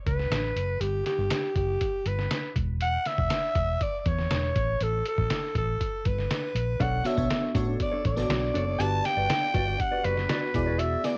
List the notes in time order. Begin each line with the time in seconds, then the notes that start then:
0.06 C#2 B4, kick, closed hi-hat
0.19 snare
0.30 A1, snare, closed hi-hat
0.56 F#1, closed hi-hat
0.80 G1 G4, closed hi-hat
1.06 G4, snare, closed hi-hat
1.18 G1
1.30 snare, closed hi-hat
1.56 F#1 G4, kick, closed hi-hat
1.81 kick, closed hi-hat
2.06 G1 B4, closed hi-hat
2.19 snare
2.31 snare, closed hi-hat
2.56 E1, kick, closed hi-hat
2.81 F#5, closed hi-hat
3.05 E5, snare, closed hi-hat
3.18 E1, kick
3.30 snare, closed hi-hat
3.55 E1, kick, closed hi-hat
3.81 D5, kick, closed hi-hat
4.00 D5
4.06 E2 C#5, kick, closed hi-hat
4.18 snare
4.31 E1, snare, closed hi-hat
4.56 A1, kick, closed hi-hat
4.81 A1 A4, closed hi-hat
5.06 A4, closed hi-hat
5.18 A1, kick
5.30 snare, closed hi-hat
5.55 A1 A4, kick, closed hi-hat
5.81 kick, closed hi-hat
6.05 G1 B4, kick, closed hi-hat
6.19 snare
6.31 snare, closed hi-hat
6.55 A#1, closed hi-hat
6.80 B1 D4 A4 C#5 F#5, kick, closed hi-hat
7.04 B3 D4 F#4 A4 C#5 E5, snare, closed hi-hat
7.17 B1 B3 D4 F#4 A4 C#5, kick
7.31 snare, closed hi-hat
7.42 muted clean electric guitar stroke
7.55 A2 B3 D4 F#4 A4 C#5, kick, closed hi-hat
7.67 D4 A4 C#5
7.80 D5, muted clean electric guitar stroke, kick, closed hi-hat
7.92 D4 A4 C#5
8.04 A1 D4 A4 C#5 D5, kick, closed hi-hat
8.16 B3 D4 F#4 A4 D5, muted clean electric guitar stroke, snare
8.29 B1, muted clean electric guitar stroke, snare, closed hi-hat
8.42 muted clean electric guitar stroke
8.54 F#1 D4 A4 C#5, closed hi-hat
8.67 D4 A4 C#5
8.79 G1 B3 D4 F#4 G4 B4 D5 A5, closed hi-hat
9.04 G5, muted clean electric guitar stroke, snare, closed hi-hat
9.17 G1 F#4 B4 D5
9.30 muted clean electric guitar stroke, snare, closed hi-hat
9.42 muted clean electric guitar stroke
9.54 G1 F#4 B4 D5, kick, closed hi-hat
9.67 F#4 D5
9.79 F#5, muted clean electric guitar stroke, kick, closed hi-hat
9.91 F#4 B4 D5
10.04 F#1 F#4 B4 D5, closed hi-hat
10.17 muted clean electric guitar stroke, snare
10.29 F#4 B4 D5, snare, closed hi-hat
10.42 muted clean electric guitar stroke
10.54 E1 B3 E4 F#4 G#4 D5, muted clean electric guitar stroke, kick, closed hi-hat
10.66 F#4 G#4 D5
10.79 F#4 G#4 D5 E5, closed hi-hat
11.04 B3 E4 F#4 G#4 D5, muted clean electric guitar stroke, snare, closed hi-hat